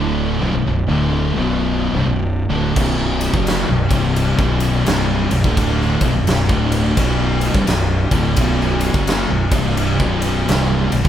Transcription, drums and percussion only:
2.76 kick, crash
3.21 ride
3.34 kick
3.47 snare, ride
3.91 kick, ride
4.16 ride
4.39 kick
4.60 ride
4.86 snare, ride
5.31 ride
5.44 kick
5.57 kick, ride
5.81 snare
6.01 kick, ride
6.27 snare, ride
6.49 kick
6.72 ride
6.97 kick, ride
7.41 ride
7.54 kick
7.67 snare, ride
8.11 kick, ride
8.36 kick, ride
8.61 snare
8.81 ride
8.94 kick
9.07 snare, ride
9.52 kick, ride
9.77 ride
10.00 kick
10.22 ride
10.49 snare, ride
10.92 ride
11.05 kick

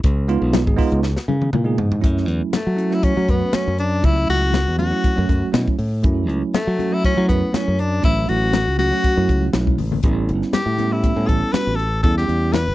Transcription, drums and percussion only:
0.04 kick, closed hi-hat, muted conga
0.29 closed hi-hat
0.53 snare, closed hi-hat, high conga
0.67 kick
0.78 kick, open hi-hat
0.92 closed hi-hat
1.03 snare, muted conga
1.17 snare
1.29 high conga
1.42 high tom
1.53 mid tom, high conga
1.78 floor tom, muted conga
1.92 floor tom
2.04 kick, closed hi-hat
2.17 snare
2.28 closed hi-hat
2.53 snare, closed hi-hat, high conga
2.78 closed hi-hat, muted conga
2.92 snare
3.03 kick, closed hi-hat, muted conga
3.28 kick, closed hi-hat
3.53 snare, closed hi-hat, high conga
3.78 closed hi-hat
4.03 kick, closed hi-hat, muted conga
4.29 closed hi-hat, muted conga
4.53 snare, closed hi-hat, high conga
4.79 closed hi-hat, muted conga, high conga
5.04 kick, closed hi-hat, muted conga
5.29 kick, closed hi-hat
5.54 snare, closed hi-hat, high conga
5.68 kick
5.79 open hi-hat
6.03 kick, closed hi-hat, muted conga
6.29 closed hi-hat, muted conga
6.54 snare, closed hi-hat, high conga
6.79 closed hi-hat, muted conga, high conga
7.04 kick, closed hi-hat, muted conga
7.29 kick, closed hi-hat
7.54 snare, closed hi-hat, high conga
7.79 closed hi-hat
8.03 kick, closed hi-hat, muted conga
8.29 closed hi-hat, muted conga
8.53 snare, closed hi-hat, high conga
8.79 closed hi-hat, muted conga, high conga
9.03 kick, closed hi-hat, muted conga
9.29 kick, closed hi-hat
9.42 high conga
9.53 snare, closed hi-hat, high conga
9.67 kick, high conga
9.78 open hi-hat, low conga
9.92 low conga
10.03 kick, closed hi-hat, muted conga
10.28 closed hi-hat, muted conga
10.42 snare
10.53 snare, closed hi-hat, high conga
10.78 closed hi-hat, muted conga, high conga
11.03 kick, closed hi-hat, muted conga
11.29 kick, closed hi-hat
11.54 snare, closed hi-hat, high conga
11.79 closed hi-hat
12.04 kick, closed hi-hat, muted conga
12.18 snare
12.29 closed hi-hat
12.54 snare, closed hi-hat, high conga

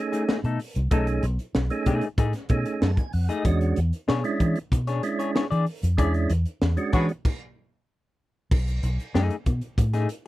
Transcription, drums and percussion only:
0.13 closed hi-hat
0.29 snare
0.44 closed hi-hat
0.60 open hi-hat
0.75 closed hi-hat
0.91 kick, closed hi-hat
1.07 closed hi-hat
1.23 closed hi-hat
1.39 closed hi-hat
1.55 snare
1.70 closed hi-hat
1.86 kick, closed hi-hat
2.01 closed hi-hat
2.18 kick, closed hi-hat
2.33 snare, closed hi-hat
2.49 kick, closed hi-hat
2.66 closed hi-hat
2.82 snare
2.97 kick, closed hi-hat
3.13 open hi-hat
3.29 closed hi-hat
3.45 kick, closed hi-hat
3.61 closed hi-hat
3.76 closed hi-hat
3.93 closed hi-hat
4.09 snare
4.24 closed hi-hat
4.40 kick, closed hi-hat
4.56 closed hi-hat
4.72 kick, closed hi-hat
4.87 snare, closed hi-hat
5.03 closed hi-hat
5.20 closed hi-hat
5.36 snare
5.52 closed hi-hat
5.66 open hi-hat
5.83 closed hi-hat
5.98 kick, closed hi-hat
6.14 closed hi-hat
6.30 closed hi-hat
6.46 closed hi-hat
6.62 snare
6.77 closed hi-hat
6.93 kick, closed hi-hat
7.09 closed hi-hat
7.25 kick, crash
8.51 kick, crash
8.68 closed hi-hat
8.83 closed hi-hat
9.00 closed hi-hat
9.15 snare
9.30 closed hi-hat
9.46 kick, closed hi-hat
9.61 closed hi-hat
9.78 kick, closed hi-hat
9.93 snare, closed hi-hat
10.09 closed hi-hat

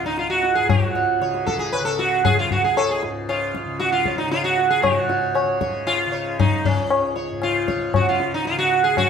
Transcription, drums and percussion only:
0.05 tabla te
0.17 tabla te
0.43 tabla te
0.69 tabla na, tabla ge
0.95 tabla te
1.22 tabla te
1.34 tabla te
1.48 tabla ke
1.61 tabla te
1.74 tabla na
1.99 tabla te
2.25 tabla na, tabla ge
2.51 tabla ge
2.77 tabla na
3.03 tabla te
3.29 tabla na
3.55 tabla ke
3.80 tabla te
3.93 tabla te
4.06 tabla ke
4.19 tabla te
4.32 tabla te
4.58 tabla te
4.83 tabla na, tabla ge
5.09 tabla te
5.35 tabla na
5.61 tabla ke
5.87 tabla na
6.14 tabla te
6.40 tabla na, tabla ge
6.65 tabla ge
6.90 tabla na
7.16 tabla te
7.42 tabla na
7.68 tabla ke
7.94 tabla na, tabla ge
8.20 tabla te
8.45 tabla te
8.72 tabla te
8.97 tabla na, tabla ge

